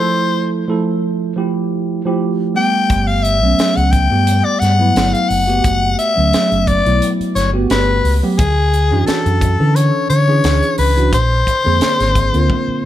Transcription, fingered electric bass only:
0, 0, Header, 1, 3, 480
1, 0, Start_track
1, 0, Tempo, 684932
1, 113, Time_signature, 4, 2, 24, 8
1, 9007, End_track
2, 0, Start_track
2, 0, Title_t, "Fingered electric bass"
2, 0, Program_c, 0, 33
2, 2033, Note_on_c, 0, 31, 81
2, 2404, Note_off_c, 0, 31, 0
2, 2404, Note_on_c, 0, 35, 79
2, 2496, Note_off_c, 0, 35, 0
2, 2642, Note_on_c, 0, 37, 74
2, 2848, Note_off_c, 0, 37, 0
2, 2882, Note_on_c, 0, 43, 77
2, 3088, Note_off_c, 0, 43, 0
2, 3235, Note_on_c, 0, 43, 77
2, 3439, Note_off_c, 0, 43, 0
2, 3473, Note_on_c, 0, 31, 79
2, 3585, Note_off_c, 0, 31, 0
2, 3714, Note_on_c, 0, 30, 84
2, 3919, Note_off_c, 0, 30, 0
2, 3955, Note_on_c, 0, 30, 97
2, 4159, Note_off_c, 0, 30, 0
2, 4329, Note_on_c, 0, 38, 76
2, 4420, Note_off_c, 0, 38, 0
2, 4566, Note_on_c, 0, 30, 72
2, 4770, Note_off_c, 0, 30, 0
2, 4807, Note_on_c, 0, 35, 73
2, 4899, Note_off_c, 0, 35, 0
2, 5154, Note_on_c, 0, 31, 79
2, 5359, Note_off_c, 0, 31, 0
2, 5397, Note_on_c, 0, 31, 82
2, 5601, Note_off_c, 0, 31, 0
2, 5634, Note_on_c, 0, 37, 79
2, 5746, Note_off_c, 0, 37, 0
2, 5880, Note_on_c, 0, 38, 92
2, 6250, Note_off_c, 0, 38, 0
2, 6250, Note_on_c, 0, 42, 88
2, 6341, Note_off_c, 0, 42, 0
2, 6488, Note_on_c, 0, 42, 78
2, 6692, Note_off_c, 0, 42, 0
2, 6729, Note_on_c, 0, 50, 81
2, 6933, Note_off_c, 0, 50, 0
2, 7077, Note_on_c, 0, 50, 77
2, 7281, Note_off_c, 0, 50, 0
2, 7316, Note_on_c, 0, 38, 78
2, 7428, Note_off_c, 0, 38, 0
2, 7559, Note_on_c, 0, 37, 81
2, 7798, Note_off_c, 0, 37, 0
2, 7798, Note_on_c, 0, 34, 103
2, 8002, Note_off_c, 0, 34, 0
2, 8174, Note_on_c, 0, 41, 74
2, 8263, Note_off_c, 0, 41, 0
2, 8410, Note_on_c, 0, 32, 73
2, 8613, Note_off_c, 0, 32, 0
2, 8651, Note_on_c, 0, 38, 80
2, 8741, Note_off_c, 0, 38, 0
2, 9007, End_track
3, 0, Start_track
3, 0, Title_t, "Muted fingered electric bass strokes"
3, 2511, Note_on_c, 9, 29, 31
3, 2581, Note_off_c, 9, 29, 0
3, 4441, Note_on_c, 9, 29, 33
3, 4511, Note_off_c, 9, 29, 0
3, 5047, Note_on_c, 9, 29, 33
3, 5117, Note_off_c, 9, 29, 0
3, 6360, Note_on_c, 9, 29, 32
3, 6430, Note_off_c, 9, 29, 0
3, 8281, Note_on_c, 9, 29, 33
3, 8351, Note_off_c, 9, 29, 0
3, 8886, Note_on_c, 9, 29, 34
3, 8956, Note_off_c, 9, 29, 0
3, 9007, End_track
0, 0, End_of_file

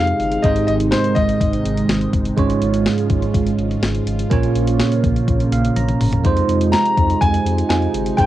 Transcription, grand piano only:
0, 0, Header, 1, 2, 480
1, 0, Start_track
1, 0, Key_signature, -4, "major"
1, 0, Tempo, 483871
1, 438, Time_signature, 4, 2, 24, 8
1, 8196, End_track
2, 0, Start_track
2, 0, Title_t, "Grand piano"
2, 0, Program_c, 0, 0
2, 0, Note_on_c, 0, 77, 89
2, 421, Note_on_c, 0, 75, 93
2, 444, Note_off_c, 0, 77, 0
2, 649, Note_off_c, 0, 75, 0
2, 664, Note_on_c, 0, 75, 89
2, 719, Note_off_c, 0, 75, 0
2, 902, Note_on_c, 0, 72, 81
2, 1141, Note_on_c, 0, 75, 98
2, 1158, Note_off_c, 0, 72, 0
2, 2070, Note_off_c, 0, 75, 0
2, 6665, Note_on_c, 0, 82, 108
2, 7151, Note_on_c, 0, 80, 108
2, 7166, Note_off_c, 0, 82, 0
2, 7614, Note_off_c, 0, 80, 0
2, 7628, Note_on_c, 0, 80, 87
2, 8106, Note_on_c, 0, 79, 100
2, 8128, Note_off_c, 0, 80, 0
2, 8161, Note_off_c, 0, 79, 0
2, 8196, End_track
0, 0, End_of_file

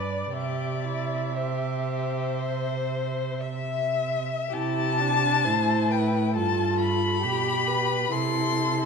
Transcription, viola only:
0, 0, Header, 1, 2, 480
1, 0, Start_track
1, 0, Key_signature, 0, "major"
1, 0, Tempo, 1030928
1, 152, Time_signature, 4, 2, 24, 8
1, 1590, Tempo, 1102941
1, 2070, Tempo, 934579
1, 2550, Tempo, 886263
1, 4393, End_track
2, 0, Start_track
2, 0, Title_t, "Viola"
2, 0, Program_c, 0, 41
2, 0, Note_on_c, 0, 74, 56
2, 152, Note_on_c, 0, 76, 52
2, 159, Note_off_c, 0, 74, 0
2, 1832, Note_off_c, 0, 76, 0
2, 2071, Note_on_c, 0, 64, 60
2, 2317, Note_on_c, 0, 62, 61
2, 2325, Note_off_c, 0, 64, 0
2, 2551, Note_on_c, 0, 64, 63
2, 2559, Note_off_c, 0, 62, 0
2, 3037, Note_on_c, 0, 65, 59
2, 3045, Note_off_c, 0, 64, 0
2, 3513, Note_off_c, 0, 65, 0
2, 3516, Note_on_c, 0, 67, 62
2, 3981, Note_off_c, 0, 67, 0
2, 3996, Note_on_c, 0, 64, 61
2, 4393, Note_off_c, 0, 64, 0
2, 4393, End_track
0, 0, End_of_file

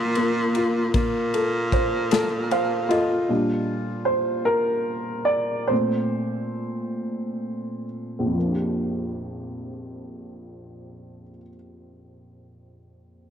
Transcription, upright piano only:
0, 0, Header, 1, 2, 480
1, 0, Start_track
1, 0, Key_signature, -2, "major"
1, 0, Tempo, 785340
1, 578, Time_signature, 6, 3, 24, 8
1, 2499, Tempo, 821918
1, 3939, Tempo, 899550
1, 4899, Tempo, 941915
1, 7420, End_track
2, 0, Start_track
2, 0, Title_t, "Upright piano"
2, 0, Program_c, 0, 0
2, 0, Control_c, 0, 64, 127
2, 0, Note_on_c, 0, 58, 69
2, 0, Note_on_c, 0, 65, 64
2, 92, Note_off_c, 0, 58, 0
2, 101, Note_on_c, 0, 58, 62
2, 333, Note_off_c, 0, 65, 0
2, 342, Note_on_c, 0, 65, 63
2, 563, Note_off_c, 0, 58, 0
2, 572, Note_on_c, 0, 58, 68
2, 573, Note_off_c, 0, 65, 0
2, 586, Control_c, 0, 64, 0
2, 687, Control_c, 0, 64, 127
2, 819, Note_on_c, 0, 69, 56
2, 1057, Note_on_c, 0, 72, 64
2, 1284, Note_off_c, 0, 69, 0
2, 1294, Note_on_c, 0, 69, 67
2, 1528, Note_off_c, 0, 72, 0
2, 1537, Note_on_c, 0, 72, 67
2, 1540, Note_on_c, 0, 77, 75
2, 1762, Note_off_c, 0, 77, 0
2, 1766, Note_on_c, 0, 65, 81
2, 1768, Note_off_c, 0, 69, 0
2, 1774, Note_on_c, 0, 75, 73
2, 1777, Note_on_c, 0, 69, 53
2, 1989, Note_off_c, 0, 58, 0
2, 1999, Note_off_c, 0, 75, 0
2, 2002, Note_off_c, 0, 72, 0
2, 2010, Note_off_c, 0, 69, 0
2, 2010, Note_on_c, 0, 46, 44
2, 2014, Note_on_c, 0, 55, 38
2, 2018, Note_on_c, 0, 62, 50
2, 2025, Control_c, 0, 64, 0
2, 2120, Control_c, 0, 64, 127
2, 2334, Note_off_c, 0, 46, 0
2, 2336, Note_off_c, 0, 55, 0
2, 2338, Note_off_c, 0, 62, 0
2, 2476, Note_on_c, 0, 72, 74
2, 2515, Note_off_c, 0, 65, 0
2, 2532, Note_off_c, 0, 72, 0
2, 2711, Note_on_c, 0, 70, 81
2, 3171, Note_off_c, 0, 70, 0
2, 3177, Note_on_c, 0, 74, 76
2, 3425, Note_on_c, 0, 72, 71
2, 3440, Note_off_c, 0, 74, 0
2, 3440, Note_on_c, 0, 46, 42
2, 3443, Note_on_c, 0, 57, 38
2, 3446, Note_on_c, 0, 60, 44
2, 3453, Control_c, 0, 64, 0
2, 3551, Control_c, 0, 64, 127
2, 4620, Note_off_c, 0, 72, 0
2, 4811, Note_on_c, 0, 34, 34
2, 4848, Note_on_c, 0, 41, 35
2, 4875, Note_off_c, 0, 46, 0
2, 4877, Note_off_c, 0, 57, 0
2, 4878, Note_off_c, 0, 60, 0
2, 4883, Note_on_c, 0, 53, 32
2, 4907, Control_c, 0, 64, 0
2, 4917, Note_on_c, 0, 58, 31
2, 4949, Note_on_c, 0, 62, 32
2, 4983, Note_on_c, 0, 67, 37
2, 4985, Control_c, 0, 64, 127
2, 6362, Note_off_c, 0, 34, 0
2, 6397, Note_off_c, 0, 41, 0
2, 6430, Note_off_c, 0, 53, 0
2, 6464, Note_off_c, 0, 58, 0
2, 6495, Note_off_c, 0, 62, 0
2, 6530, Note_off_c, 0, 67, 0
2, 7420, End_track
0, 0, End_of_file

